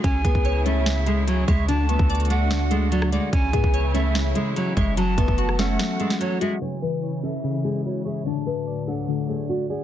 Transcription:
<<
  \new Staff \with { instrumentName = "Pan flute" } { \time 4/4 \key cis \phrygian \tempo 4 = 146 gis''4. e''4. cis''8 e''8 | a''4. fis''4. d''8 fis''8 | gis''4. e''4. cis''8 e''8 | a''4. fis''4. cis''8 e''8 |
gis''4. e''4. cis''8 e''8 | a''4. fis''4. d''8 fis''8 | }
  \new Staff \with { instrumentName = "Nylon-string guitar" } { \time 4/4 \key cis \phrygian cis'8 b4 a4 gis8 fis8 gis8 | d'8 b4 a4 gis8 fis8 gis8 | cis'8 b4 a4 gis8 fis8 gis8 | fis8 b4 a4 gis8 fis8 gis8 |
cis''8 b'4 a'4 gis'8 fis'8 gis'8 | d''8 b'4 a'4 gis'8 fis'8 gis'8 | }
  \new Staff \with { instrumentName = "Synth keys" } { \time 4/4 \key cis \phrygian cis8 gis'8 cis''8 cis'8 cis8 gis4 cis''8 | d8 a8 d''8 d'8 d8 a4 d''8 | cis8 gis'8 cis''8 cis'8 cis8 gis4 cis''8 | fis8 a8 fis'8 cis'8 fis8 a4 fis'8 |
cis8 e8 cis''8 cis'8 cis8 gis4 cis''8 | d8 a8 d''8 d'8 d8 a4 d''8 | }
  \new Staff \with { instrumentName = "String section" } { \clef bass \time 4/4 \key cis \phrygian <cis e' gis'>1 | <d a fis'>1 | <cis e e'>1 | <a fis'>1 |
<cis e e'>1 | <d, a, fis>1 | }
  \new Staff \with { instrumentName = "808-style bass" } { \clef bass \time 4/4 \key cis \phrygian cis,8 cis,16 cis,2~ cis,8. d,8~ | d,8. d,2. r16 | cis,8 gis,16 cis,4.~ cis,16 r4 fis,,8~ | fis,,8 fis,,16 fis,,4~ fis,,16 r2 |
r1 | r1 | }
  \new DrumStaff \with { instrumentName = "Drums" } \drummode { \time 4/4 <hh bd>8 <hh bd>16 bd16 hh8 hh8 <hh sn>8 hh8 hh8 <hh bd>8 | hh8 hh16 bd16 hh32 hh32 hh32 hh32 hh8 <hh sn>8 hh8 hh16 ss16 hh8 | <hh bd>8 <hh bd>16 bd16 hh8 hh8 <hh sn>8 hh8 hh8 <hh bd>8 | hh8 <hh bd>16 bd16 hh16 ss16 <hh sn>8 <hh sn>8 hh16 sn16 hh8 hh8 |
r4 r4 r4 r4 | r4 r4 r4 r4 | }
>>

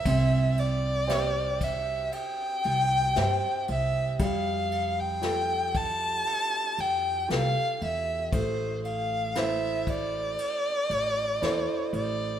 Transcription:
<<
  \new Staff \with { instrumentName = "Violin" } { \time 4/4 \key f \major \tempo 4 = 58 e''8 d''4 e''8 g''4. e''8 | f''8. g''8. a''4 g''8 f''8 e''8 | c''8 f''8 e''8 d''2 d''8 | }
  \new Staff \with { instrumentName = "Grand piano" } { \time 4/4 \key f \major c'4 <g' c'' e''>4 r4 <g' c'' e''>4 | g4 <f' g' a'>4 r4 <f' g' a'>4 | a4 <e' a' c''>4 r4 <e' a' c''>4 | }
  \new Staff \with { instrumentName = "Upright bass" } { \clef bass \time 4/4 \key f \major c,2 r8 c,8 g,16 r16 c,8 | f,2 r8 f,8 c,16 r16 e,8 | a,,2 r8 a,,8 e,16 r16 a,,8 | }
  \new DrumStaff \with { instrumentName = "Drums" } \drummode { \time 4/4 <bd cymr>8 cymr8 <cymr sn>8 <bd cymr>8 cymr8 cymr8 <cymr sn>8 cymr8 | <bd cymr>8 cymr8 <cymr sn>8 <bd cymr>8 cymr8 cymr8 <cymr sn>8 cymr8 | <bd cymr>8 cymr8 <cymr sn>8 <bd cymr>8 cymr8 cymr8 <cymr sn>8 cymr8 | }
>>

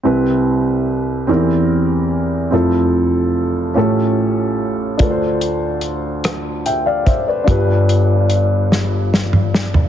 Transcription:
<<
  \new Staff \with { instrumentName = "Upright piano" } { \time 6/8 \key c \major \tempo 4. = 48 << { r2. | r2. | r2 <e'' g''>16 <d'' f''>16 <c'' e''>16 <b' d''>16~ | <b' d''>16 r2 r8. | } \\ { <c, c c' e' g' b'>4. <e, e c' ees' g' bes'>4. | <f,, f, c' e' f' a'>4. <a,, a, cis' f' g' a'>4. | <d, d d' f' a' b' c''>2. | <g,, g, d' f' g' b'>2. | } >> }
  \new DrumStaff \with { instrumentName = "Drums" } \drummode { \time 6/8 r4. r4. | r4. r4. | <hh bd>8 hh8 hh8 <hh ss>8 hh8 <hh bd>8 | <hh bd>8 hh8 hh8 sn8 sn16 toml16 sn16 tomfh16 | }
>>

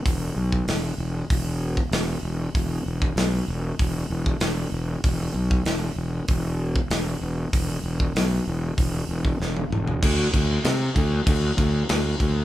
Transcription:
<<
  \new Staff \with { instrumentName = "Fingered electric bass" } { \clef bass \time 4/4 \key c \lydian \tempo 4 = 96 e,,8 b,,8 e,,8 e,,8 e,,4 e,,8 e,,8 | e,,8 e,,8 b,,8 e,,8 e,,8 e,,8 e,,8 e,,8 | e,,8 b,,8 e,,8 e,,8 e,,4 e,,8 e,,8 | e,,8 e,,8 b,,8 e,,8 e,,8 e,,8 e,,8 e,,8 |
d,8 d,8 c8 d,8 d,8 d,8 d,8 d,8 | }
  \new DrumStaff \with { instrumentName = "Drums" } \drummode { \time 4/4 <hho bd>8. bd16 <hho sn>4 <hho bd>8. bd16 <hho sn>4 | <hho bd>8. bd16 <hho sn>4 <hho bd>8. bd16 <hho sn>4 | <hho bd>8. bd16 <hho sn>4 <hho bd>8. bd16 <hho sn>4 | <hho bd>8. bd16 <hho sn>4 <hho bd>8. bd16 sn16 tommh16 toml16 tomfh16 |
<cymc bd>8 <cymc bd>8 <cymc sn>8 <cymc bd>8 <cymc bd>8 <cymc bd>8 <cymc sn>8 <cymc bd>8 | }
>>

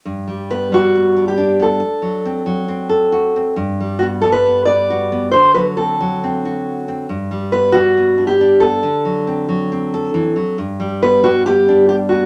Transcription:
<<
  \new Staff \with { instrumentName = "Steel-string acoustic guitar" } { \time 4/4 \key g \major \tempo 4 = 137 r4 b'8 fis'4~ fis'16 g'8. a'8~ | a'2~ a'8 r4. | r4 fis'8 a'16 b'8. d''4. | c''8 b'8 a'2~ a'8 r8 |
r4 b'8 fis'4~ fis'16 g'8. a'8~ | a'2~ a'8 r4. | r4 b'8 fis'8 g'4 g'8 fis'8 | }
  \new Staff \with { instrumentName = "Nylon-string guitar" } { \time 4/4 \key g \major << { r4 b4 b8 d'8 d'8 b8 | r4 c'4 c'8 a'8 fis'8 c'8 | r4 b4 b8 b'8 fis'8 b8 | r4 c'4 c'8 fis'8 r8 c'8 |
r4 b4 b8 d'8 d'8 b8 | r4 c'4 c'8 a'4. | r4 b4 b8 d'8 r8 b8 | } \\ { g,8 g4 g2~ g8 | r8 fis4 fis2~ fis8 | g,8 g4 g2~ g8 | d8 fis4 fis2~ fis8 |
g,8 g4 g2~ g8 | d8 fis4 fis4. e8 fis8 | g,8 g4 g2~ g8 | } >> }
>>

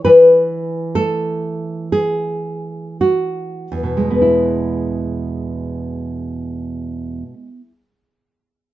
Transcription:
\new Staff \with { instrumentName = "Nylon-string guitar" } { \time 4/4 \key e \major \tempo 4 = 53 << { b'4 a'4 gis'4 fis'4 | <e, b, gis b e'>1 | } \\ { e4 a2. | r1 | } >> }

